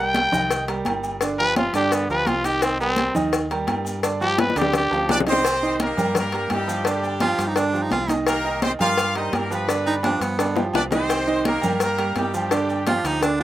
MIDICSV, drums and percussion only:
0, 0, Header, 1, 2, 480
1, 0, Start_track
1, 0, Key_signature, -3, "minor"
1, 0, Tempo, 353357
1, 1645, Time_signature, 4, 2, 24, 8
1, 18243, End_track
2, 0, Start_track
2, 0, Title_t, "Drums"
2, 196, Note_on_c, 9, 63, 105
2, 206, Note_on_c, 9, 68, 87
2, 213, Note_on_c, 9, 56, 83
2, 213, Note_on_c, 9, 70, 31
2, 332, Note_off_c, 9, 63, 0
2, 342, Note_off_c, 9, 68, 0
2, 349, Note_off_c, 9, 56, 0
2, 349, Note_off_c, 9, 70, 0
2, 436, Note_on_c, 9, 63, 37
2, 436, Note_on_c, 9, 64, 85
2, 444, Note_on_c, 9, 68, 113
2, 457, Note_on_c, 9, 70, 77
2, 572, Note_off_c, 9, 63, 0
2, 572, Note_off_c, 9, 64, 0
2, 580, Note_off_c, 9, 68, 0
2, 593, Note_off_c, 9, 70, 0
2, 673, Note_on_c, 9, 63, 39
2, 686, Note_on_c, 9, 56, 102
2, 693, Note_on_c, 9, 68, 70
2, 694, Note_on_c, 9, 70, 87
2, 809, Note_off_c, 9, 63, 0
2, 822, Note_off_c, 9, 56, 0
2, 828, Note_off_c, 9, 68, 0
2, 830, Note_off_c, 9, 70, 0
2, 919, Note_on_c, 9, 63, 35
2, 928, Note_on_c, 9, 56, 77
2, 937, Note_on_c, 9, 70, 30
2, 1055, Note_off_c, 9, 63, 0
2, 1063, Note_off_c, 9, 56, 0
2, 1073, Note_off_c, 9, 70, 0
2, 1155, Note_on_c, 9, 63, 84
2, 1162, Note_on_c, 9, 66, 76
2, 1162, Note_on_c, 9, 68, 109
2, 1169, Note_on_c, 9, 56, 77
2, 1170, Note_on_c, 9, 70, 31
2, 1291, Note_off_c, 9, 63, 0
2, 1298, Note_off_c, 9, 66, 0
2, 1298, Note_off_c, 9, 68, 0
2, 1305, Note_off_c, 9, 56, 0
2, 1306, Note_off_c, 9, 70, 0
2, 1398, Note_on_c, 9, 63, 37
2, 1407, Note_on_c, 9, 68, 87
2, 1408, Note_on_c, 9, 70, 74
2, 1534, Note_off_c, 9, 63, 0
2, 1543, Note_off_c, 9, 68, 0
2, 1544, Note_off_c, 9, 70, 0
2, 1640, Note_on_c, 9, 56, 116
2, 1646, Note_on_c, 9, 63, 35
2, 1652, Note_on_c, 9, 70, 91
2, 1775, Note_off_c, 9, 56, 0
2, 1781, Note_off_c, 9, 63, 0
2, 1788, Note_off_c, 9, 70, 0
2, 1884, Note_on_c, 9, 63, 34
2, 1885, Note_on_c, 9, 68, 87
2, 1898, Note_on_c, 9, 70, 30
2, 2020, Note_off_c, 9, 63, 0
2, 2021, Note_off_c, 9, 68, 0
2, 2034, Note_off_c, 9, 70, 0
2, 2123, Note_on_c, 9, 56, 78
2, 2125, Note_on_c, 9, 63, 99
2, 2125, Note_on_c, 9, 68, 108
2, 2132, Note_on_c, 9, 70, 30
2, 2259, Note_off_c, 9, 56, 0
2, 2261, Note_off_c, 9, 63, 0
2, 2261, Note_off_c, 9, 68, 0
2, 2268, Note_off_c, 9, 70, 0
2, 2358, Note_on_c, 9, 63, 36
2, 2360, Note_on_c, 9, 56, 75
2, 2370, Note_on_c, 9, 70, 72
2, 2494, Note_off_c, 9, 63, 0
2, 2495, Note_off_c, 9, 56, 0
2, 2506, Note_off_c, 9, 70, 0
2, 2601, Note_on_c, 9, 68, 92
2, 2604, Note_on_c, 9, 63, 40
2, 2605, Note_on_c, 9, 56, 100
2, 2611, Note_on_c, 9, 70, 93
2, 2737, Note_off_c, 9, 68, 0
2, 2740, Note_off_c, 9, 63, 0
2, 2741, Note_off_c, 9, 56, 0
2, 2747, Note_off_c, 9, 70, 0
2, 2843, Note_on_c, 9, 63, 35
2, 2853, Note_on_c, 9, 70, 29
2, 2979, Note_off_c, 9, 63, 0
2, 2989, Note_off_c, 9, 70, 0
2, 3076, Note_on_c, 9, 63, 87
2, 3084, Note_on_c, 9, 66, 74
2, 3084, Note_on_c, 9, 68, 101
2, 3087, Note_on_c, 9, 56, 77
2, 3095, Note_on_c, 9, 70, 30
2, 3212, Note_off_c, 9, 63, 0
2, 3220, Note_off_c, 9, 66, 0
2, 3220, Note_off_c, 9, 68, 0
2, 3223, Note_off_c, 9, 56, 0
2, 3231, Note_off_c, 9, 70, 0
2, 3319, Note_on_c, 9, 56, 73
2, 3330, Note_on_c, 9, 70, 81
2, 3455, Note_off_c, 9, 56, 0
2, 3466, Note_off_c, 9, 70, 0
2, 3557, Note_on_c, 9, 63, 38
2, 3558, Note_on_c, 9, 68, 105
2, 3561, Note_on_c, 9, 56, 119
2, 3563, Note_on_c, 9, 70, 90
2, 3693, Note_off_c, 9, 63, 0
2, 3694, Note_off_c, 9, 68, 0
2, 3697, Note_off_c, 9, 56, 0
2, 3699, Note_off_c, 9, 70, 0
2, 3791, Note_on_c, 9, 63, 36
2, 3813, Note_on_c, 9, 70, 31
2, 3927, Note_off_c, 9, 63, 0
2, 3949, Note_off_c, 9, 70, 0
2, 4027, Note_on_c, 9, 63, 105
2, 4039, Note_on_c, 9, 68, 91
2, 4048, Note_on_c, 9, 56, 83
2, 4058, Note_on_c, 9, 70, 29
2, 4163, Note_off_c, 9, 63, 0
2, 4174, Note_off_c, 9, 68, 0
2, 4184, Note_off_c, 9, 56, 0
2, 4194, Note_off_c, 9, 70, 0
2, 4277, Note_on_c, 9, 63, 37
2, 4277, Note_on_c, 9, 64, 93
2, 4281, Note_on_c, 9, 68, 105
2, 4288, Note_on_c, 9, 70, 72
2, 4413, Note_off_c, 9, 63, 0
2, 4413, Note_off_c, 9, 64, 0
2, 4417, Note_off_c, 9, 68, 0
2, 4424, Note_off_c, 9, 70, 0
2, 4517, Note_on_c, 9, 68, 73
2, 4521, Note_on_c, 9, 56, 112
2, 4528, Note_on_c, 9, 70, 85
2, 4653, Note_off_c, 9, 68, 0
2, 4657, Note_off_c, 9, 56, 0
2, 4664, Note_off_c, 9, 70, 0
2, 4755, Note_on_c, 9, 63, 36
2, 4767, Note_on_c, 9, 56, 73
2, 4770, Note_on_c, 9, 70, 31
2, 4891, Note_off_c, 9, 63, 0
2, 4903, Note_off_c, 9, 56, 0
2, 4906, Note_off_c, 9, 70, 0
2, 4989, Note_on_c, 9, 66, 79
2, 4989, Note_on_c, 9, 68, 112
2, 4995, Note_on_c, 9, 56, 76
2, 4996, Note_on_c, 9, 63, 83
2, 5009, Note_on_c, 9, 70, 33
2, 5125, Note_off_c, 9, 66, 0
2, 5125, Note_off_c, 9, 68, 0
2, 5131, Note_off_c, 9, 56, 0
2, 5132, Note_off_c, 9, 63, 0
2, 5144, Note_off_c, 9, 70, 0
2, 5227, Note_on_c, 9, 68, 93
2, 5241, Note_on_c, 9, 63, 38
2, 5250, Note_on_c, 9, 70, 74
2, 5363, Note_off_c, 9, 68, 0
2, 5377, Note_off_c, 9, 63, 0
2, 5386, Note_off_c, 9, 70, 0
2, 5478, Note_on_c, 9, 56, 110
2, 5483, Note_on_c, 9, 63, 35
2, 5485, Note_on_c, 9, 70, 97
2, 5614, Note_off_c, 9, 56, 0
2, 5618, Note_off_c, 9, 63, 0
2, 5621, Note_off_c, 9, 70, 0
2, 5710, Note_on_c, 9, 68, 81
2, 5718, Note_on_c, 9, 63, 37
2, 5725, Note_on_c, 9, 70, 30
2, 5846, Note_off_c, 9, 68, 0
2, 5854, Note_off_c, 9, 63, 0
2, 5861, Note_off_c, 9, 70, 0
2, 5952, Note_on_c, 9, 68, 113
2, 5955, Note_on_c, 9, 56, 81
2, 5955, Note_on_c, 9, 60, 95
2, 5958, Note_on_c, 9, 63, 112
2, 5969, Note_on_c, 9, 70, 29
2, 6087, Note_off_c, 9, 68, 0
2, 6091, Note_off_c, 9, 56, 0
2, 6091, Note_off_c, 9, 60, 0
2, 6094, Note_off_c, 9, 63, 0
2, 6105, Note_off_c, 9, 70, 0
2, 6108, Note_on_c, 9, 60, 75
2, 6197, Note_on_c, 9, 56, 74
2, 6201, Note_on_c, 9, 63, 37
2, 6206, Note_on_c, 9, 70, 72
2, 6244, Note_off_c, 9, 60, 0
2, 6268, Note_on_c, 9, 61, 106
2, 6333, Note_off_c, 9, 56, 0
2, 6337, Note_off_c, 9, 63, 0
2, 6342, Note_off_c, 9, 70, 0
2, 6404, Note_off_c, 9, 61, 0
2, 6427, Note_on_c, 9, 65, 86
2, 6427, Note_on_c, 9, 68, 89
2, 6431, Note_on_c, 9, 56, 113
2, 6431, Note_on_c, 9, 61, 84
2, 6439, Note_on_c, 9, 63, 41
2, 6448, Note_on_c, 9, 70, 86
2, 6563, Note_off_c, 9, 65, 0
2, 6563, Note_off_c, 9, 68, 0
2, 6567, Note_off_c, 9, 56, 0
2, 6567, Note_off_c, 9, 61, 0
2, 6575, Note_off_c, 9, 63, 0
2, 6584, Note_off_c, 9, 70, 0
2, 6669, Note_on_c, 9, 65, 75
2, 6685, Note_on_c, 9, 63, 34
2, 6695, Note_on_c, 9, 70, 29
2, 6805, Note_off_c, 9, 65, 0
2, 6821, Note_off_c, 9, 63, 0
2, 6830, Note_off_c, 9, 70, 0
2, 6912, Note_on_c, 9, 66, 104
2, 6912, Note_on_c, 9, 68, 114
2, 6916, Note_on_c, 9, 56, 77
2, 6916, Note_on_c, 9, 61, 98
2, 6917, Note_on_c, 9, 63, 90
2, 6931, Note_on_c, 9, 70, 33
2, 7048, Note_off_c, 9, 66, 0
2, 7048, Note_off_c, 9, 68, 0
2, 7052, Note_off_c, 9, 56, 0
2, 7052, Note_off_c, 9, 61, 0
2, 7053, Note_off_c, 9, 63, 0
2, 7067, Note_off_c, 9, 70, 0
2, 7067, Note_on_c, 9, 61, 111
2, 7153, Note_on_c, 9, 56, 71
2, 7157, Note_on_c, 9, 66, 99
2, 7175, Note_on_c, 9, 70, 76
2, 7203, Note_off_c, 9, 61, 0
2, 7230, Note_on_c, 9, 61, 83
2, 7289, Note_off_c, 9, 56, 0
2, 7293, Note_off_c, 9, 66, 0
2, 7311, Note_off_c, 9, 70, 0
2, 7366, Note_off_c, 9, 61, 0
2, 7391, Note_on_c, 9, 63, 38
2, 7393, Note_on_c, 9, 68, 104
2, 7397, Note_on_c, 9, 56, 112
2, 7415, Note_on_c, 9, 70, 98
2, 7527, Note_off_c, 9, 63, 0
2, 7528, Note_off_c, 9, 68, 0
2, 7533, Note_off_c, 9, 56, 0
2, 7551, Note_off_c, 9, 70, 0
2, 7640, Note_on_c, 9, 63, 36
2, 7654, Note_on_c, 9, 70, 32
2, 7776, Note_off_c, 9, 63, 0
2, 7790, Note_off_c, 9, 70, 0
2, 7875, Note_on_c, 9, 63, 112
2, 7876, Note_on_c, 9, 56, 77
2, 7880, Note_on_c, 9, 68, 86
2, 7894, Note_on_c, 9, 70, 29
2, 8011, Note_off_c, 9, 63, 0
2, 8012, Note_off_c, 9, 56, 0
2, 8016, Note_off_c, 9, 68, 0
2, 8030, Note_off_c, 9, 70, 0
2, 8115, Note_on_c, 9, 68, 113
2, 8122, Note_on_c, 9, 63, 37
2, 8122, Note_on_c, 9, 64, 86
2, 8130, Note_on_c, 9, 70, 71
2, 8251, Note_off_c, 9, 68, 0
2, 8257, Note_off_c, 9, 63, 0
2, 8257, Note_off_c, 9, 64, 0
2, 8266, Note_off_c, 9, 70, 0
2, 8354, Note_on_c, 9, 56, 108
2, 8359, Note_on_c, 9, 63, 38
2, 8359, Note_on_c, 9, 64, 84
2, 8361, Note_on_c, 9, 68, 75
2, 8372, Note_on_c, 9, 70, 88
2, 8490, Note_off_c, 9, 56, 0
2, 8495, Note_off_c, 9, 63, 0
2, 8495, Note_off_c, 9, 64, 0
2, 8497, Note_off_c, 9, 68, 0
2, 8508, Note_off_c, 9, 70, 0
2, 8590, Note_on_c, 9, 56, 73
2, 8592, Note_on_c, 9, 63, 36
2, 8612, Note_on_c, 9, 70, 28
2, 8726, Note_off_c, 9, 56, 0
2, 8728, Note_off_c, 9, 63, 0
2, 8748, Note_off_c, 9, 70, 0
2, 8829, Note_on_c, 9, 56, 78
2, 8835, Note_on_c, 9, 63, 85
2, 8835, Note_on_c, 9, 66, 78
2, 8835, Note_on_c, 9, 68, 111
2, 8855, Note_on_c, 9, 70, 33
2, 8965, Note_off_c, 9, 56, 0
2, 8970, Note_off_c, 9, 63, 0
2, 8971, Note_off_c, 9, 66, 0
2, 8971, Note_off_c, 9, 68, 0
2, 8990, Note_off_c, 9, 70, 0
2, 9068, Note_on_c, 9, 68, 90
2, 9073, Note_on_c, 9, 63, 36
2, 9090, Note_on_c, 9, 70, 78
2, 9204, Note_off_c, 9, 68, 0
2, 9209, Note_off_c, 9, 63, 0
2, 9226, Note_off_c, 9, 70, 0
2, 9302, Note_on_c, 9, 56, 112
2, 9314, Note_on_c, 9, 63, 34
2, 9329, Note_on_c, 9, 70, 88
2, 9438, Note_off_c, 9, 56, 0
2, 9450, Note_off_c, 9, 63, 0
2, 9465, Note_off_c, 9, 70, 0
2, 9548, Note_on_c, 9, 63, 34
2, 9549, Note_on_c, 9, 68, 80
2, 9564, Note_on_c, 9, 70, 31
2, 9684, Note_off_c, 9, 63, 0
2, 9685, Note_off_c, 9, 68, 0
2, 9699, Note_off_c, 9, 70, 0
2, 9785, Note_on_c, 9, 63, 106
2, 9791, Note_on_c, 9, 56, 83
2, 9793, Note_on_c, 9, 68, 107
2, 9805, Note_on_c, 9, 70, 31
2, 9921, Note_off_c, 9, 63, 0
2, 9927, Note_off_c, 9, 56, 0
2, 9929, Note_off_c, 9, 68, 0
2, 9941, Note_off_c, 9, 70, 0
2, 10024, Note_on_c, 9, 63, 37
2, 10034, Note_on_c, 9, 56, 77
2, 10050, Note_on_c, 9, 70, 73
2, 10160, Note_off_c, 9, 63, 0
2, 10170, Note_off_c, 9, 56, 0
2, 10186, Note_off_c, 9, 70, 0
2, 10266, Note_on_c, 9, 56, 112
2, 10270, Note_on_c, 9, 63, 37
2, 10271, Note_on_c, 9, 68, 94
2, 10282, Note_on_c, 9, 70, 80
2, 10402, Note_off_c, 9, 56, 0
2, 10406, Note_off_c, 9, 63, 0
2, 10407, Note_off_c, 9, 68, 0
2, 10418, Note_off_c, 9, 70, 0
2, 10499, Note_on_c, 9, 63, 36
2, 10530, Note_on_c, 9, 70, 31
2, 10635, Note_off_c, 9, 63, 0
2, 10666, Note_off_c, 9, 70, 0
2, 10741, Note_on_c, 9, 63, 88
2, 10752, Note_on_c, 9, 56, 78
2, 10753, Note_on_c, 9, 66, 73
2, 10753, Note_on_c, 9, 68, 112
2, 10769, Note_on_c, 9, 70, 33
2, 10877, Note_off_c, 9, 63, 0
2, 10888, Note_off_c, 9, 56, 0
2, 10889, Note_off_c, 9, 66, 0
2, 10889, Note_off_c, 9, 68, 0
2, 10905, Note_off_c, 9, 70, 0
2, 10982, Note_on_c, 9, 63, 75
2, 10994, Note_on_c, 9, 56, 69
2, 11001, Note_on_c, 9, 70, 77
2, 11117, Note_off_c, 9, 63, 0
2, 11130, Note_off_c, 9, 56, 0
2, 11137, Note_off_c, 9, 70, 0
2, 11228, Note_on_c, 9, 56, 116
2, 11228, Note_on_c, 9, 63, 37
2, 11236, Note_on_c, 9, 68, 108
2, 11244, Note_on_c, 9, 70, 95
2, 11363, Note_off_c, 9, 56, 0
2, 11364, Note_off_c, 9, 63, 0
2, 11371, Note_off_c, 9, 68, 0
2, 11380, Note_off_c, 9, 70, 0
2, 11472, Note_on_c, 9, 63, 35
2, 11489, Note_on_c, 9, 70, 32
2, 11608, Note_off_c, 9, 63, 0
2, 11624, Note_off_c, 9, 70, 0
2, 11711, Note_on_c, 9, 63, 101
2, 11713, Note_on_c, 9, 56, 84
2, 11716, Note_on_c, 9, 68, 88
2, 11727, Note_on_c, 9, 70, 29
2, 11847, Note_off_c, 9, 63, 0
2, 11849, Note_off_c, 9, 56, 0
2, 11851, Note_off_c, 9, 68, 0
2, 11863, Note_off_c, 9, 70, 0
2, 11941, Note_on_c, 9, 68, 106
2, 11960, Note_on_c, 9, 63, 36
2, 11960, Note_on_c, 9, 64, 88
2, 11969, Note_on_c, 9, 70, 77
2, 12077, Note_off_c, 9, 68, 0
2, 12095, Note_off_c, 9, 63, 0
2, 12095, Note_off_c, 9, 64, 0
2, 12105, Note_off_c, 9, 70, 0
2, 12191, Note_on_c, 9, 56, 110
2, 12197, Note_on_c, 9, 63, 37
2, 12197, Note_on_c, 9, 68, 72
2, 12205, Note_on_c, 9, 70, 84
2, 12327, Note_off_c, 9, 56, 0
2, 12333, Note_off_c, 9, 63, 0
2, 12333, Note_off_c, 9, 68, 0
2, 12341, Note_off_c, 9, 70, 0
2, 12434, Note_on_c, 9, 56, 79
2, 12434, Note_on_c, 9, 63, 33
2, 12454, Note_on_c, 9, 70, 28
2, 12570, Note_off_c, 9, 56, 0
2, 12570, Note_off_c, 9, 63, 0
2, 12590, Note_off_c, 9, 70, 0
2, 12673, Note_on_c, 9, 56, 78
2, 12675, Note_on_c, 9, 63, 85
2, 12678, Note_on_c, 9, 66, 76
2, 12678, Note_on_c, 9, 68, 115
2, 12697, Note_on_c, 9, 70, 33
2, 12809, Note_off_c, 9, 56, 0
2, 12811, Note_off_c, 9, 63, 0
2, 12814, Note_off_c, 9, 66, 0
2, 12814, Note_off_c, 9, 68, 0
2, 12833, Note_off_c, 9, 70, 0
2, 12911, Note_on_c, 9, 68, 92
2, 12929, Note_on_c, 9, 63, 37
2, 12930, Note_on_c, 9, 70, 74
2, 13047, Note_off_c, 9, 68, 0
2, 13064, Note_off_c, 9, 63, 0
2, 13066, Note_off_c, 9, 70, 0
2, 13158, Note_on_c, 9, 56, 120
2, 13165, Note_on_c, 9, 63, 35
2, 13171, Note_on_c, 9, 70, 89
2, 13294, Note_off_c, 9, 56, 0
2, 13301, Note_off_c, 9, 63, 0
2, 13307, Note_off_c, 9, 70, 0
2, 13392, Note_on_c, 9, 68, 83
2, 13407, Note_on_c, 9, 63, 36
2, 13407, Note_on_c, 9, 70, 29
2, 13528, Note_off_c, 9, 68, 0
2, 13543, Note_off_c, 9, 63, 0
2, 13543, Note_off_c, 9, 70, 0
2, 13625, Note_on_c, 9, 68, 109
2, 13638, Note_on_c, 9, 56, 77
2, 13639, Note_on_c, 9, 63, 97
2, 13647, Note_on_c, 9, 70, 30
2, 13761, Note_off_c, 9, 68, 0
2, 13774, Note_off_c, 9, 56, 0
2, 13774, Note_off_c, 9, 63, 0
2, 13783, Note_off_c, 9, 70, 0
2, 13875, Note_on_c, 9, 56, 79
2, 13880, Note_on_c, 9, 70, 79
2, 13884, Note_on_c, 9, 63, 36
2, 14011, Note_off_c, 9, 56, 0
2, 14016, Note_off_c, 9, 70, 0
2, 14019, Note_off_c, 9, 63, 0
2, 14110, Note_on_c, 9, 65, 91
2, 14110, Note_on_c, 9, 68, 88
2, 14113, Note_on_c, 9, 56, 108
2, 14121, Note_on_c, 9, 63, 36
2, 14124, Note_on_c, 9, 70, 86
2, 14245, Note_off_c, 9, 65, 0
2, 14245, Note_off_c, 9, 68, 0
2, 14249, Note_off_c, 9, 56, 0
2, 14257, Note_off_c, 9, 63, 0
2, 14260, Note_off_c, 9, 70, 0
2, 14340, Note_on_c, 9, 66, 88
2, 14351, Note_on_c, 9, 60, 86
2, 14354, Note_on_c, 9, 63, 37
2, 14364, Note_on_c, 9, 70, 30
2, 14476, Note_off_c, 9, 66, 0
2, 14486, Note_off_c, 9, 60, 0
2, 14490, Note_off_c, 9, 63, 0
2, 14500, Note_off_c, 9, 70, 0
2, 14582, Note_on_c, 9, 66, 73
2, 14582, Note_on_c, 9, 68, 109
2, 14592, Note_on_c, 9, 63, 81
2, 14601, Note_on_c, 9, 70, 31
2, 14602, Note_on_c, 9, 56, 77
2, 14602, Note_on_c, 9, 60, 92
2, 14718, Note_off_c, 9, 66, 0
2, 14718, Note_off_c, 9, 68, 0
2, 14727, Note_off_c, 9, 63, 0
2, 14737, Note_off_c, 9, 70, 0
2, 14738, Note_off_c, 9, 56, 0
2, 14738, Note_off_c, 9, 60, 0
2, 14816, Note_on_c, 9, 66, 116
2, 14831, Note_on_c, 9, 70, 71
2, 14832, Note_on_c, 9, 63, 73
2, 14833, Note_on_c, 9, 56, 66
2, 14833, Note_on_c, 9, 61, 86
2, 14952, Note_off_c, 9, 66, 0
2, 14967, Note_off_c, 9, 63, 0
2, 14967, Note_off_c, 9, 70, 0
2, 14969, Note_off_c, 9, 56, 0
2, 14969, Note_off_c, 9, 61, 0
2, 15069, Note_on_c, 9, 68, 107
2, 15076, Note_on_c, 9, 70, 87
2, 15077, Note_on_c, 9, 56, 122
2, 15081, Note_on_c, 9, 63, 37
2, 15205, Note_off_c, 9, 68, 0
2, 15211, Note_off_c, 9, 70, 0
2, 15212, Note_off_c, 9, 56, 0
2, 15217, Note_off_c, 9, 63, 0
2, 15313, Note_on_c, 9, 70, 31
2, 15321, Note_on_c, 9, 63, 35
2, 15449, Note_off_c, 9, 70, 0
2, 15457, Note_off_c, 9, 63, 0
2, 15545, Note_on_c, 9, 68, 85
2, 15556, Note_on_c, 9, 56, 77
2, 15557, Note_on_c, 9, 63, 105
2, 15560, Note_on_c, 9, 70, 30
2, 15681, Note_off_c, 9, 68, 0
2, 15692, Note_off_c, 9, 56, 0
2, 15693, Note_off_c, 9, 63, 0
2, 15696, Note_off_c, 9, 70, 0
2, 15779, Note_on_c, 9, 68, 110
2, 15803, Note_on_c, 9, 70, 75
2, 15806, Note_on_c, 9, 63, 36
2, 15806, Note_on_c, 9, 64, 86
2, 15915, Note_off_c, 9, 68, 0
2, 15938, Note_off_c, 9, 70, 0
2, 15941, Note_off_c, 9, 63, 0
2, 15941, Note_off_c, 9, 64, 0
2, 16031, Note_on_c, 9, 56, 104
2, 16031, Note_on_c, 9, 68, 73
2, 16037, Note_on_c, 9, 70, 87
2, 16039, Note_on_c, 9, 63, 38
2, 16166, Note_off_c, 9, 68, 0
2, 16167, Note_off_c, 9, 56, 0
2, 16173, Note_off_c, 9, 70, 0
2, 16174, Note_off_c, 9, 63, 0
2, 16280, Note_on_c, 9, 56, 73
2, 16283, Note_on_c, 9, 70, 32
2, 16288, Note_on_c, 9, 63, 35
2, 16416, Note_off_c, 9, 56, 0
2, 16419, Note_off_c, 9, 70, 0
2, 16424, Note_off_c, 9, 63, 0
2, 16513, Note_on_c, 9, 56, 74
2, 16522, Note_on_c, 9, 63, 87
2, 16522, Note_on_c, 9, 66, 74
2, 16522, Note_on_c, 9, 68, 107
2, 16528, Note_on_c, 9, 70, 31
2, 16648, Note_off_c, 9, 56, 0
2, 16658, Note_off_c, 9, 63, 0
2, 16658, Note_off_c, 9, 66, 0
2, 16658, Note_off_c, 9, 68, 0
2, 16664, Note_off_c, 9, 70, 0
2, 16763, Note_on_c, 9, 63, 38
2, 16763, Note_on_c, 9, 68, 89
2, 16766, Note_on_c, 9, 70, 75
2, 16898, Note_off_c, 9, 63, 0
2, 16898, Note_off_c, 9, 68, 0
2, 16901, Note_off_c, 9, 70, 0
2, 16994, Note_on_c, 9, 56, 120
2, 17003, Note_on_c, 9, 70, 89
2, 17014, Note_on_c, 9, 63, 35
2, 17130, Note_off_c, 9, 56, 0
2, 17139, Note_off_c, 9, 70, 0
2, 17150, Note_off_c, 9, 63, 0
2, 17243, Note_on_c, 9, 68, 83
2, 17248, Note_on_c, 9, 70, 29
2, 17250, Note_on_c, 9, 63, 34
2, 17379, Note_off_c, 9, 68, 0
2, 17384, Note_off_c, 9, 70, 0
2, 17386, Note_off_c, 9, 63, 0
2, 17477, Note_on_c, 9, 56, 80
2, 17484, Note_on_c, 9, 68, 107
2, 17486, Note_on_c, 9, 63, 98
2, 17490, Note_on_c, 9, 70, 31
2, 17612, Note_off_c, 9, 56, 0
2, 17620, Note_off_c, 9, 68, 0
2, 17621, Note_off_c, 9, 63, 0
2, 17626, Note_off_c, 9, 70, 0
2, 17723, Note_on_c, 9, 63, 36
2, 17724, Note_on_c, 9, 56, 77
2, 17728, Note_on_c, 9, 70, 75
2, 17859, Note_off_c, 9, 63, 0
2, 17860, Note_off_c, 9, 56, 0
2, 17864, Note_off_c, 9, 70, 0
2, 17963, Note_on_c, 9, 70, 84
2, 17965, Note_on_c, 9, 68, 88
2, 17966, Note_on_c, 9, 56, 108
2, 17966, Note_on_c, 9, 63, 36
2, 18098, Note_off_c, 9, 70, 0
2, 18101, Note_off_c, 9, 56, 0
2, 18101, Note_off_c, 9, 68, 0
2, 18102, Note_off_c, 9, 63, 0
2, 18243, End_track
0, 0, End_of_file